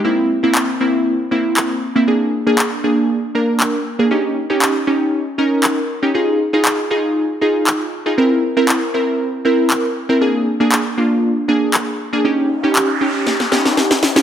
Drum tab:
CP |----x-------x---|----x-------x---|----x-------x---|----x-------x---|
SD |----------------|----------------|----------------|----------------|

CP |----x-------x---|----x-------x---|----x-----------|
SD |----------------|----------------|--------oooooooo|